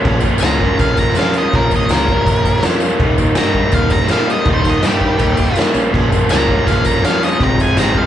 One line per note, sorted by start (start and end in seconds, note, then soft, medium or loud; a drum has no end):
0.05 0.31 A#1 loud
0.05 0.42 A#2 medium
0.05 0.26 F3 medium
0.05 0.24 A#3 loud
0.05 kick loud
0.05 crash medium
0.09 0.21 C#4 medium
0.20 0.45 C#4 medium
0.20 kick medium
0.20 tambourine medium
0.25 0.43 F3 medium
0.25 0.44 A#3 medium
0.38 0.67 C#2 medium
0.38 0.77 A#5 loud
0.38 tambourine loud
0.42 1.16 A#2 medium
0.42 0.63 F3 medium
0.42 0.61 A#3 medium
0.42 0.60 C#4 medium
0.42 snare loud
0.42 crash medium
0.60 1.16 F3 medium
0.60 1.19 A#3 medium
0.60 1.19 C#4 medium
0.60 kick medium
0.79 1.05 A#1 loud
0.79 0.97 F5 medium
0.79 kick loud
0.79 tambourine medium
0.79 crash medium
0.97 1.16 A#5 loud
0.97 kick medium
0.97 tambourine medium
1.09 snare soft
1.15 1.42 F2 medium
1.15 1.52 A#2 medium
1.15 1.37 F3 loud
1.15 1.34 F5 medium
1.15 snare loud
1.15 tambourine medium
1.15 crash medium
1.19 1.36 A#3 medium
1.19 1.34 C#4 loud
1.34 1.55 A#3 medium
1.34 1.55 C#4 medium
1.34 tambourine medium
1.38 1.53 F3 medium
1.38 1.54 D#5 medium
1.53 1.79 A#1 medium
1.53 1.89 A#2 medium
1.53 1.75 F3 medium
1.53 1.74 A#3 medium
1.53 1.72 C#4 loud
1.53 1.72 A#4 loud
1.53 kick loud
1.53 crash medium
1.71 1.92 A#3 medium
1.71 1.93 C#4 medium
1.71 kick medium
1.71 tambourine medium
1.76 1.90 F3 medium
1.76 1.91 D#5 medium
1.89 2.15 C#2 medium
1.89 2.26 A#2 medium
1.89 2.11 F3 medium
1.89 2.10 A#3 medium
1.89 2.61 A#4 loud
1.89 snare loud
1.89 tambourine medium
1.89 crash medium
1.95 2.07 C#4 medium
2.08 2.66 A#3 medium
2.08 2.65 C#4 medium
2.08 kick medium
2.08 tambourine soft
2.12 2.63 F3 medium
2.25 2.51 A#1 medium
2.25 kick loud
2.25 tambourine medium
2.25 crash medium
2.45 kick medium
2.45 tambourine medium
2.56 snare soft
2.62 2.89 F2 loud
2.62 2.98 A#2 medium
2.62 2.84 F3 loud
2.62 2.84 A#3 medium
2.62 2.80 C#4 loud
2.62 snare loud
2.62 tambourine medium
2.62 crash medium
2.80 3.03 A#3 medium
2.80 2.98 C#4 medium
2.80 tambourine medium
2.85 3.00 F3 medium
2.99 3.25 D#2 medium
2.99 3.34 D#3 medium
2.99 3.21 G3 medium
2.99 kick loud
2.99 crash medium
3.04 3.19 A#3 medium
3.04 3.17 D#4 loud
3.18 3.36 G3 medium
3.18 3.37 A#3 medium
3.18 3.39 D#4 medium
3.18 kick medium
3.18 tambourine medium
3.35 3.72 D#3 medium
3.35 3.57 G3 medium
3.35 3.56 A#3 medium
3.35 3.73 A#5 loud
3.35 snare loud
3.35 tambourine loud
3.35 crash medium
3.39 3.64 G2 medium
3.39 3.53 D#4 medium
3.54 4.07 G3 medium
3.54 4.09 A#3 medium
3.54 4.10 D#4 medium
3.54 kick medium
3.72 3.98 D#2 medium
3.72 3.91 F5 loud
3.72 kick loud
3.72 tambourine medium
3.72 crash medium
3.90 4.09 A#5 medium
3.90 kick medium
3.90 tambourine medium
4.00 snare soft
4.08 4.35 A#2 medium
4.08 4.44 D#3 medium
4.08 4.29 G3 loud
4.08 4.28 A#3 medium
4.08 4.25 D#4 medium
4.08 4.28 F5 medium
4.08 snare loud
4.08 tambourine medium
4.08 crash medium
4.26 4.45 G3 medium
4.26 4.47 A#3 medium
4.26 4.48 D#4 medium
4.26 tambourine medium
4.31 4.47 D#5 medium
4.45 4.72 D#2 loud
4.45 4.79 D#3 medium
4.45 4.66 G3 medium
4.45 4.65 A#3 medium
4.45 4.61 D#4 loud
4.45 kick loud
4.45 crash medium
4.54 4.70 C5 medium
4.63 4.84 A#3 medium
4.63 4.84 D#4 medium
4.63 kick medium
4.63 tambourine medium
4.67 4.81 G3 medium
4.67 4.85 D#5 medium
4.80 5.08 G2 medium
4.80 5.19 D#3 medium
4.80 5.04 G3 medium
4.80 5.02 A#3 medium
4.80 snare loud
4.80 tambourine medium
4.80 crash medium
4.85 4.99 D#4 medium
4.85 5.57 G4 loud
5.00 5.56 A#3 medium
5.00 5.57 D#4 medium
5.00 kick medium
5.05 5.55 G3 medium
5.19 5.46 D#2 medium
5.19 kick loud
5.19 tambourine medium
5.19 crash medium
5.37 kick medium
5.37 tambourine medium
5.50 snare soft
5.54 5.69 A#2 loud
5.54 5.73 D#3 medium
5.54 5.74 G3 loud
5.54 5.74 A#3 medium
5.54 tambourine medium
5.58 5.74 D#4 loud
5.58 snare loud
5.58 crash medium
5.74 5.88 A#1 loud
5.74 5.89 A#2 medium
5.74 5.91 F3 medium
5.74 5.92 A#3 medium
5.74 5.93 C#4 medium
5.74 tambourine medium
5.90 6.26 A#2 medium
5.90 6.13 F3 medium
5.90 6.10 A#3 loud
5.94 6.20 A#1 medium
5.94 6.09 C#4 loud
5.94 kick loud
5.94 crash medium
6.10 6.28 F3 medium
6.10 6.29 A#3 medium
6.10 6.29 C#4 medium
6.10 kick medium
6.10 tambourine medium
6.27 6.56 C#2 medium
6.27 6.66 A#2 medium
6.27 6.51 F3 medium
6.27 6.49 A#3 medium
6.27 6.47 C#4 medium
6.27 6.66 A#5 loud
6.27 snare loud
6.27 tambourine loud
6.27 crash medium
6.48 7.04 F3 medium
6.48 7.04 A#3 medium
6.48 7.06 C#4 medium
6.48 kick medium
6.67 6.93 A#1 loud
6.67 6.85 F5 medium
6.67 kick loud
6.67 tambourine medium
6.67 crash medium
6.85 7.03 A#5 medium
6.85 kick medium
6.85 tambourine medium
6.95 snare soft
7.03 7.29 F2 loud
7.03 7.39 A#2 medium
7.03 7.25 F3 loud
7.03 7.22 A#3 medium
7.03 7.23 F5 loud
7.03 snare loud
7.03 tambourine medium
7.03 crash medium
7.08 7.19 C#4 loud
7.20 7.40 A#3 medium
7.20 7.38 C#4 medium
7.20 tambourine medium
7.25 7.42 F3 medium
7.25 7.41 D#5 medium
7.39 7.66 F1 loud
7.39 7.77 F2 medium
7.39 7.75 C3 medium
7.39 7.59 F3 medium
7.39 7.58 G#3 loud
7.39 7.57 C4 medium
7.39 7.61 A#5 loud
7.39 kick loud
7.39 tambourine soft
7.39 crash medium
7.58 7.76 F3 medium
7.58 7.77 G#3 medium
7.58 7.79 C4 medium
7.58 7.78 G#5 loud
7.58 kick medium
7.58 tambourine medium
7.75 8.02 G#1 medium
7.75 8.06 C3 medium
7.75 7.95 F3 medium
7.75 7.93 G#3 medium
7.75 7.96 A#5 medium
7.75 snare loud
7.75 tambourine loud
7.75 crash medium
7.80 7.91 C4 medium
7.92 8.06 G#3 medium
7.92 8.06 C4 medium
7.92 kick medium
7.96 8.06 F3 medium
7.96 8.06 F5 medium